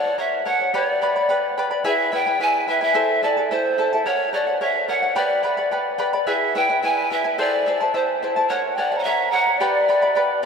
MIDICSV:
0, 0, Header, 1, 4, 480
1, 0, Start_track
1, 0, Tempo, 553506
1, 643, Time_signature, 2, 2, 24, 8
1, 9066, End_track
2, 0, Start_track
2, 0, Title_t, "Quena"
2, 0, Program_c, 0, 77
2, 7365, Note_on_c, 0, 78, 66
2, 7594, Note_on_c, 0, 79, 61
2, 7607, Note_off_c, 0, 78, 0
2, 7776, Note_on_c, 0, 82, 52
2, 7789, Note_off_c, 0, 79, 0
2, 7826, Note_off_c, 0, 82, 0
2, 7826, Note_on_c, 0, 82, 71
2, 8060, Note_off_c, 0, 82, 0
2, 8060, Note_on_c, 0, 82, 87
2, 8289, Note_off_c, 0, 82, 0
2, 8295, Note_on_c, 0, 74, 72
2, 8997, Note_off_c, 0, 74, 0
2, 9066, End_track
3, 0, Start_track
3, 0, Title_t, "Pan flute"
3, 0, Program_c, 1, 75
3, 0, Note_on_c, 1, 74, 76
3, 163, Note_on_c, 1, 76, 73
3, 176, Note_off_c, 1, 74, 0
3, 396, Note_on_c, 1, 78, 87
3, 409, Note_off_c, 1, 76, 0
3, 639, Note_off_c, 1, 78, 0
3, 650, Note_on_c, 1, 73, 77
3, 780, Note_off_c, 1, 73, 0
3, 780, Note_on_c, 1, 74, 77
3, 1331, Note_off_c, 1, 74, 0
3, 1622, Note_on_c, 1, 76, 81
3, 1835, Note_off_c, 1, 76, 0
3, 1859, Note_on_c, 1, 79, 90
3, 2095, Note_on_c, 1, 80, 88
3, 2108, Note_off_c, 1, 79, 0
3, 2328, Note_off_c, 1, 80, 0
3, 2336, Note_on_c, 1, 76, 78
3, 2440, Note_off_c, 1, 76, 0
3, 2453, Note_on_c, 1, 76, 87
3, 2804, Note_on_c, 1, 74, 84
3, 2817, Note_off_c, 1, 76, 0
3, 3036, Note_on_c, 1, 72, 73
3, 3050, Note_off_c, 1, 74, 0
3, 3398, Note_off_c, 1, 72, 0
3, 3524, Note_on_c, 1, 73, 81
3, 3745, Note_off_c, 1, 73, 0
3, 3760, Note_on_c, 1, 74, 75
3, 3999, Note_on_c, 1, 76, 70
3, 4012, Note_off_c, 1, 74, 0
3, 4230, Note_off_c, 1, 76, 0
3, 4236, Note_on_c, 1, 78, 72
3, 4478, Note_on_c, 1, 74, 65
3, 4491, Note_off_c, 1, 78, 0
3, 5199, Note_off_c, 1, 74, 0
3, 5444, Note_on_c, 1, 76, 82
3, 5688, Note_on_c, 1, 79, 84
3, 5701, Note_off_c, 1, 76, 0
3, 5923, Note_off_c, 1, 79, 0
3, 5928, Note_on_c, 1, 80, 82
3, 6149, Note_off_c, 1, 80, 0
3, 6175, Note_on_c, 1, 76, 84
3, 6408, Note_on_c, 1, 74, 78
3, 6421, Note_off_c, 1, 76, 0
3, 6898, Note_on_c, 1, 72, 59
3, 6911, Note_off_c, 1, 74, 0
3, 7251, Note_off_c, 1, 72, 0
3, 7365, Note_on_c, 1, 73, 73
3, 7601, Note_on_c, 1, 74, 81
3, 7614, Note_off_c, 1, 73, 0
3, 7791, Note_on_c, 1, 78, 65
3, 7804, Note_off_c, 1, 74, 0
3, 7833, Note_on_c, 1, 76, 78
3, 7846, Note_off_c, 1, 78, 0
3, 8073, Note_on_c, 1, 78, 84
3, 8086, Note_off_c, 1, 76, 0
3, 8316, Note_off_c, 1, 78, 0
3, 8321, Note_on_c, 1, 74, 76
3, 9010, Note_off_c, 1, 74, 0
3, 9066, End_track
4, 0, Start_track
4, 0, Title_t, "Charango"
4, 0, Program_c, 2, 24
4, 34, Note_on_c, 2, 78, 47
4, 47, Note_on_c, 2, 73, 35
4, 151, Note_off_c, 2, 73, 0
4, 157, Note_on_c, 2, 70, 53
4, 159, Note_off_c, 2, 78, 0
4, 161, Note_on_c, 2, 73, 50
4, 167, Note_on_c, 2, 78, 58
4, 382, Note_off_c, 2, 70, 0
4, 390, Note_off_c, 2, 73, 0
4, 393, Note_on_c, 2, 70, 56
4, 395, Note_off_c, 2, 78, 0
4, 401, Note_on_c, 2, 73, 59
4, 406, Note_on_c, 2, 78, 54
4, 509, Note_off_c, 2, 78, 0
4, 518, Note_off_c, 2, 70, 0
4, 520, Note_on_c, 2, 78, 46
4, 522, Note_off_c, 2, 73, 0
4, 533, Note_on_c, 2, 73, 43
4, 636, Note_off_c, 2, 73, 0
4, 639, Note_off_c, 2, 78, 0
4, 640, Note_on_c, 2, 67, 66
4, 643, Note_on_c, 2, 79, 60
4, 644, Note_on_c, 2, 71, 70
4, 649, Note_on_c, 2, 74, 70
4, 651, Note_on_c, 2, 83, 64
4, 870, Note_off_c, 2, 79, 0
4, 875, Note_off_c, 2, 71, 0
4, 878, Note_off_c, 2, 74, 0
4, 881, Note_off_c, 2, 67, 0
4, 881, Note_on_c, 2, 79, 54
4, 884, Note_off_c, 2, 83, 0
4, 885, Note_on_c, 2, 71, 58
4, 888, Note_on_c, 2, 74, 63
4, 894, Note_on_c, 2, 83, 64
4, 994, Note_off_c, 2, 83, 0
4, 1001, Note_off_c, 2, 79, 0
4, 1004, Note_off_c, 2, 71, 0
4, 1005, Note_off_c, 2, 74, 0
4, 1005, Note_on_c, 2, 83, 44
4, 1014, Note_on_c, 2, 74, 46
4, 1017, Note_on_c, 2, 71, 37
4, 1114, Note_off_c, 2, 71, 0
4, 1117, Note_off_c, 2, 74, 0
4, 1117, Note_on_c, 2, 79, 54
4, 1120, Note_off_c, 2, 83, 0
4, 1124, Note_on_c, 2, 71, 63
4, 1128, Note_on_c, 2, 74, 51
4, 1131, Note_on_c, 2, 83, 66
4, 1356, Note_off_c, 2, 79, 0
4, 1357, Note_off_c, 2, 71, 0
4, 1365, Note_off_c, 2, 74, 0
4, 1366, Note_off_c, 2, 83, 0
4, 1366, Note_on_c, 2, 79, 55
4, 1367, Note_on_c, 2, 71, 65
4, 1375, Note_on_c, 2, 74, 66
4, 1378, Note_on_c, 2, 83, 77
4, 1470, Note_off_c, 2, 83, 0
4, 1472, Note_off_c, 2, 74, 0
4, 1478, Note_off_c, 2, 71, 0
4, 1480, Note_on_c, 2, 83, 55
4, 1482, Note_on_c, 2, 74, 44
4, 1484, Note_off_c, 2, 79, 0
4, 1488, Note_on_c, 2, 71, 46
4, 1594, Note_off_c, 2, 71, 0
4, 1599, Note_on_c, 2, 68, 58
4, 1600, Note_on_c, 2, 64, 71
4, 1600, Note_on_c, 2, 76, 72
4, 1601, Note_off_c, 2, 74, 0
4, 1601, Note_off_c, 2, 83, 0
4, 1605, Note_on_c, 2, 71, 71
4, 1608, Note_on_c, 2, 80, 77
4, 1826, Note_off_c, 2, 76, 0
4, 1832, Note_off_c, 2, 64, 0
4, 1836, Note_off_c, 2, 71, 0
4, 1837, Note_off_c, 2, 80, 0
4, 1837, Note_on_c, 2, 76, 61
4, 1840, Note_off_c, 2, 68, 0
4, 1842, Note_on_c, 2, 64, 57
4, 1847, Note_on_c, 2, 71, 64
4, 1847, Note_on_c, 2, 80, 67
4, 1951, Note_off_c, 2, 80, 0
4, 1959, Note_off_c, 2, 71, 0
4, 1959, Note_off_c, 2, 76, 0
4, 1961, Note_on_c, 2, 80, 48
4, 1962, Note_off_c, 2, 64, 0
4, 1970, Note_on_c, 2, 71, 42
4, 1975, Note_on_c, 2, 64, 35
4, 2074, Note_off_c, 2, 64, 0
4, 2078, Note_off_c, 2, 71, 0
4, 2079, Note_on_c, 2, 76, 50
4, 2081, Note_off_c, 2, 80, 0
4, 2084, Note_on_c, 2, 64, 55
4, 2089, Note_on_c, 2, 71, 60
4, 2091, Note_on_c, 2, 80, 60
4, 2310, Note_off_c, 2, 76, 0
4, 2315, Note_off_c, 2, 64, 0
4, 2319, Note_off_c, 2, 71, 0
4, 2320, Note_on_c, 2, 76, 49
4, 2323, Note_off_c, 2, 80, 0
4, 2325, Note_on_c, 2, 64, 51
4, 2329, Note_on_c, 2, 71, 56
4, 2333, Note_on_c, 2, 80, 55
4, 2426, Note_off_c, 2, 80, 0
4, 2436, Note_off_c, 2, 71, 0
4, 2436, Note_on_c, 2, 80, 47
4, 2439, Note_off_c, 2, 64, 0
4, 2440, Note_off_c, 2, 76, 0
4, 2446, Note_on_c, 2, 71, 45
4, 2450, Note_on_c, 2, 64, 41
4, 2547, Note_off_c, 2, 64, 0
4, 2551, Note_on_c, 2, 72, 64
4, 2555, Note_on_c, 2, 76, 64
4, 2556, Note_off_c, 2, 71, 0
4, 2557, Note_off_c, 2, 80, 0
4, 2557, Note_on_c, 2, 64, 69
4, 2559, Note_on_c, 2, 69, 69
4, 2561, Note_on_c, 2, 81, 75
4, 2787, Note_off_c, 2, 76, 0
4, 2793, Note_off_c, 2, 64, 0
4, 2796, Note_off_c, 2, 72, 0
4, 2797, Note_off_c, 2, 69, 0
4, 2797, Note_on_c, 2, 76, 50
4, 2800, Note_off_c, 2, 81, 0
4, 2803, Note_on_c, 2, 64, 59
4, 2807, Note_on_c, 2, 69, 57
4, 2812, Note_on_c, 2, 81, 62
4, 2912, Note_off_c, 2, 81, 0
4, 2919, Note_off_c, 2, 76, 0
4, 2920, Note_off_c, 2, 69, 0
4, 2922, Note_off_c, 2, 64, 0
4, 2922, Note_on_c, 2, 81, 45
4, 2931, Note_on_c, 2, 69, 36
4, 2938, Note_on_c, 2, 64, 35
4, 3034, Note_off_c, 2, 64, 0
4, 3041, Note_off_c, 2, 81, 0
4, 3042, Note_off_c, 2, 69, 0
4, 3043, Note_on_c, 2, 76, 53
4, 3044, Note_on_c, 2, 64, 63
4, 3052, Note_on_c, 2, 69, 58
4, 3056, Note_on_c, 2, 81, 63
4, 3268, Note_off_c, 2, 76, 0
4, 3273, Note_off_c, 2, 64, 0
4, 3276, Note_off_c, 2, 69, 0
4, 3279, Note_off_c, 2, 81, 0
4, 3279, Note_on_c, 2, 76, 54
4, 3284, Note_on_c, 2, 64, 54
4, 3286, Note_on_c, 2, 69, 49
4, 3289, Note_on_c, 2, 81, 53
4, 3395, Note_off_c, 2, 81, 0
4, 3399, Note_off_c, 2, 76, 0
4, 3402, Note_off_c, 2, 64, 0
4, 3403, Note_off_c, 2, 69, 0
4, 3405, Note_on_c, 2, 81, 47
4, 3413, Note_on_c, 2, 69, 44
4, 3419, Note_on_c, 2, 64, 38
4, 3514, Note_off_c, 2, 64, 0
4, 3517, Note_on_c, 2, 70, 65
4, 3522, Note_on_c, 2, 73, 68
4, 3523, Note_off_c, 2, 81, 0
4, 3526, Note_off_c, 2, 69, 0
4, 3528, Note_on_c, 2, 78, 71
4, 3743, Note_off_c, 2, 70, 0
4, 3752, Note_off_c, 2, 73, 0
4, 3753, Note_on_c, 2, 70, 58
4, 3756, Note_off_c, 2, 78, 0
4, 3762, Note_on_c, 2, 73, 61
4, 3767, Note_on_c, 2, 78, 59
4, 3865, Note_off_c, 2, 78, 0
4, 3875, Note_on_c, 2, 78, 46
4, 3877, Note_off_c, 2, 70, 0
4, 3878, Note_off_c, 2, 73, 0
4, 3889, Note_on_c, 2, 73, 36
4, 3989, Note_off_c, 2, 73, 0
4, 3994, Note_off_c, 2, 78, 0
4, 3995, Note_on_c, 2, 70, 52
4, 4000, Note_on_c, 2, 73, 60
4, 4004, Note_on_c, 2, 78, 64
4, 4224, Note_off_c, 2, 70, 0
4, 4232, Note_off_c, 2, 73, 0
4, 4234, Note_on_c, 2, 70, 56
4, 4238, Note_off_c, 2, 78, 0
4, 4242, Note_on_c, 2, 73, 51
4, 4248, Note_on_c, 2, 78, 59
4, 4345, Note_off_c, 2, 78, 0
4, 4354, Note_off_c, 2, 73, 0
4, 4355, Note_on_c, 2, 78, 55
4, 4357, Note_off_c, 2, 70, 0
4, 4364, Note_on_c, 2, 73, 41
4, 4466, Note_off_c, 2, 73, 0
4, 4469, Note_off_c, 2, 78, 0
4, 4470, Note_on_c, 2, 67, 61
4, 4472, Note_on_c, 2, 79, 64
4, 4474, Note_on_c, 2, 71, 73
4, 4476, Note_on_c, 2, 74, 73
4, 4477, Note_on_c, 2, 83, 79
4, 4698, Note_off_c, 2, 79, 0
4, 4704, Note_off_c, 2, 71, 0
4, 4707, Note_off_c, 2, 74, 0
4, 4708, Note_on_c, 2, 79, 53
4, 4713, Note_off_c, 2, 83, 0
4, 4714, Note_on_c, 2, 71, 59
4, 4715, Note_off_c, 2, 67, 0
4, 4717, Note_on_c, 2, 74, 59
4, 4724, Note_on_c, 2, 83, 60
4, 4822, Note_off_c, 2, 83, 0
4, 4828, Note_off_c, 2, 74, 0
4, 4830, Note_off_c, 2, 71, 0
4, 4832, Note_on_c, 2, 83, 50
4, 4834, Note_off_c, 2, 79, 0
4, 4839, Note_on_c, 2, 74, 37
4, 4841, Note_on_c, 2, 71, 40
4, 4950, Note_off_c, 2, 71, 0
4, 4955, Note_off_c, 2, 74, 0
4, 4955, Note_on_c, 2, 79, 49
4, 4956, Note_off_c, 2, 83, 0
4, 4960, Note_on_c, 2, 71, 60
4, 4965, Note_on_c, 2, 74, 55
4, 4965, Note_on_c, 2, 83, 52
4, 5178, Note_off_c, 2, 79, 0
4, 5183, Note_off_c, 2, 71, 0
4, 5189, Note_off_c, 2, 74, 0
4, 5189, Note_off_c, 2, 83, 0
4, 5189, Note_on_c, 2, 79, 65
4, 5194, Note_on_c, 2, 71, 59
4, 5199, Note_on_c, 2, 74, 67
4, 5200, Note_on_c, 2, 83, 69
4, 5308, Note_off_c, 2, 83, 0
4, 5314, Note_off_c, 2, 74, 0
4, 5315, Note_off_c, 2, 79, 0
4, 5317, Note_off_c, 2, 71, 0
4, 5318, Note_on_c, 2, 83, 59
4, 5324, Note_on_c, 2, 74, 45
4, 5333, Note_on_c, 2, 71, 39
4, 5430, Note_off_c, 2, 71, 0
4, 5434, Note_on_c, 2, 68, 61
4, 5435, Note_on_c, 2, 76, 63
4, 5437, Note_off_c, 2, 74, 0
4, 5437, Note_on_c, 2, 64, 70
4, 5439, Note_off_c, 2, 83, 0
4, 5440, Note_on_c, 2, 71, 76
4, 5442, Note_on_c, 2, 80, 70
4, 5669, Note_off_c, 2, 76, 0
4, 5672, Note_off_c, 2, 64, 0
4, 5677, Note_off_c, 2, 71, 0
4, 5678, Note_off_c, 2, 68, 0
4, 5679, Note_on_c, 2, 76, 59
4, 5682, Note_off_c, 2, 80, 0
4, 5682, Note_on_c, 2, 64, 66
4, 5687, Note_on_c, 2, 71, 59
4, 5691, Note_on_c, 2, 80, 60
4, 5794, Note_off_c, 2, 80, 0
4, 5798, Note_off_c, 2, 71, 0
4, 5800, Note_off_c, 2, 76, 0
4, 5802, Note_off_c, 2, 64, 0
4, 5805, Note_on_c, 2, 80, 41
4, 5809, Note_on_c, 2, 71, 46
4, 5813, Note_on_c, 2, 64, 41
4, 5914, Note_off_c, 2, 64, 0
4, 5918, Note_off_c, 2, 71, 0
4, 5919, Note_on_c, 2, 76, 57
4, 5923, Note_off_c, 2, 80, 0
4, 5924, Note_on_c, 2, 64, 61
4, 5929, Note_on_c, 2, 71, 57
4, 5933, Note_on_c, 2, 80, 62
4, 6150, Note_off_c, 2, 76, 0
4, 6156, Note_off_c, 2, 71, 0
4, 6158, Note_off_c, 2, 64, 0
4, 6160, Note_on_c, 2, 76, 52
4, 6163, Note_off_c, 2, 80, 0
4, 6167, Note_on_c, 2, 71, 54
4, 6168, Note_on_c, 2, 64, 52
4, 6174, Note_on_c, 2, 80, 59
4, 6271, Note_off_c, 2, 80, 0
4, 6277, Note_off_c, 2, 71, 0
4, 6281, Note_off_c, 2, 64, 0
4, 6281, Note_off_c, 2, 76, 0
4, 6282, Note_on_c, 2, 80, 52
4, 6287, Note_on_c, 2, 71, 44
4, 6291, Note_on_c, 2, 64, 42
4, 6394, Note_off_c, 2, 64, 0
4, 6397, Note_off_c, 2, 71, 0
4, 6401, Note_on_c, 2, 69, 61
4, 6402, Note_off_c, 2, 80, 0
4, 6404, Note_on_c, 2, 64, 63
4, 6404, Note_on_c, 2, 76, 64
4, 6407, Note_on_c, 2, 72, 81
4, 6409, Note_on_c, 2, 81, 71
4, 6634, Note_off_c, 2, 76, 0
4, 6641, Note_off_c, 2, 64, 0
4, 6642, Note_off_c, 2, 69, 0
4, 6644, Note_on_c, 2, 76, 54
4, 6645, Note_off_c, 2, 72, 0
4, 6646, Note_off_c, 2, 81, 0
4, 6651, Note_on_c, 2, 64, 52
4, 6655, Note_on_c, 2, 72, 54
4, 6659, Note_on_c, 2, 81, 64
4, 6758, Note_off_c, 2, 81, 0
4, 6763, Note_off_c, 2, 76, 0
4, 6766, Note_off_c, 2, 72, 0
4, 6767, Note_off_c, 2, 64, 0
4, 6768, Note_on_c, 2, 81, 48
4, 6777, Note_on_c, 2, 72, 40
4, 6782, Note_on_c, 2, 64, 37
4, 6875, Note_off_c, 2, 64, 0
4, 6881, Note_off_c, 2, 72, 0
4, 6882, Note_off_c, 2, 81, 0
4, 6885, Note_on_c, 2, 64, 56
4, 6886, Note_on_c, 2, 76, 56
4, 6891, Note_on_c, 2, 72, 57
4, 6893, Note_on_c, 2, 81, 57
4, 7122, Note_off_c, 2, 76, 0
4, 7124, Note_off_c, 2, 64, 0
4, 7127, Note_off_c, 2, 72, 0
4, 7128, Note_off_c, 2, 81, 0
4, 7133, Note_on_c, 2, 76, 46
4, 7134, Note_on_c, 2, 64, 52
4, 7140, Note_on_c, 2, 72, 59
4, 7143, Note_on_c, 2, 81, 59
4, 7240, Note_off_c, 2, 81, 0
4, 7246, Note_off_c, 2, 72, 0
4, 7248, Note_off_c, 2, 76, 0
4, 7249, Note_off_c, 2, 64, 0
4, 7250, Note_on_c, 2, 81, 47
4, 7257, Note_on_c, 2, 72, 49
4, 7261, Note_on_c, 2, 64, 36
4, 7366, Note_off_c, 2, 64, 0
4, 7367, Note_off_c, 2, 81, 0
4, 7370, Note_off_c, 2, 72, 0
4, 7370, Note_on_c, 2, 70, 67
4, 7372, Note_on_c, 2, 73, 71
4, 7377, Note_on_c, 2, 78, 70
4, 7600, Note_off_c, 2, 70, 0
4, 7604, Note_off_c, 2, 73, 0
4, 7611, Note_off_c, 2, 78, 0
4, 7611, Note_on_c, 2, 70, 54
4, 7615, Note_on_c, 2, 73, 60
4, 7623, Note_on_c, 2, 78, 65
4, 7724, Note_off_c, 2, 78, 0
4, 7728, Note_off_c, 2, 70, 0
4, 7730, Note_off_c, 2, 73, 0
4, 7734, Note_on_c, 2, 78, 52
4, 7745, Note_on_c, 2, 73, 46
4, 7850, Note_off_c, 2, 73, 0
4, 7850, Note_off_c, 2, 78, 0
4, 7851, Note_on_c, 2, 70, 54
4, 7861, Note_on_c, 2, 73, 59
4, 7866, Note_on_c, 2, 78, 60
4, 8080, Note_off_c, 2, 70, 0
4, 8085, Note_off_c, 2, 73, 0
4, 8088, Note_off_c, 2, 78, 0
4, 8090, Note_on_c, 2, 70, 58
4, 8095, Note_on_c, 2, 73, 55
4, 8098, Note_on_c, 2, 78, 59
4, 8200, Note_off_c, 2, 78, 0
4, 8208, Note_off_c, 2, 70, 0
4, 8210, Note_off_c, 2, 73, 0
4, 8210, Note_on_c, 2, 78, 52
4, 8227, Note_on_c, 2, 73, 42
4, 8324, Note_off_c, 2, 73, 0
4, 8327, Note_off_c, 2, 78, 0
4, 8328, Note_on_c, 2, 67, 59
4, 8330, Note_on_c, 2, 79, 75
4, 8332, Note_on_c, 2, 71, 71
4, 8334, Note_on_c, 2, 74, 65
4, 8338, Note_on_c, 2, 83, 79
4, 8562, Note_off_c, 2, 79, 0
4, 8565, Note_off_c, 2, 71, 0
4, 8567, Note_off_c, 2, 67, 0
4, 8571, Note_off_c, 2, 74, 0
4, 8572, Note_off_c, 2, 83, 0
4, 8572, Note_on_c, 2, 79, 55
4, 8575, Note_on_c, 2, 71, 57
4, 8580, Note_on_c, 2, 74, 61
4, 8582, Note_on_c, 2, 83, 63
4, 8679, Note_off_c, 2, 83, 0
4, 8685, Note_off_c, 2, 74, 0
4, 8690, Note_off_c, 2, 79, 0
4, 8690, Note_on_c, 2, 83, 41
4, 8691, Note_off_c, 2, 71, 0
4, 8695, Note_on_c, 2, 74, 46
4, 8702, Note_on_c, 2, 71, 38
4, 8800, Note_off_c, 2, 71, 0
4, 8803, Note_off_c, 2, 74, 0
4, 8804, Note_on_c, 2, 79, 55
4, 8806, Note_off_c, 2, 83, 0
4, 8810, Note_on_c, 2, 71, 59
4, 8813, Note_on_c, 2, 74, 65
4, 8816, Note_on_c, 2, 83, 59
4, 9031, Note_off_c, 2, 79, 0
4, 9034, Note_off_c, 2, 71, 0
4, 9037, Note_off_c, 2, 74, 0
4, 9045, Note_off_c, 2, 83, 0
4, 9066, End_track
0, 0, End_of_file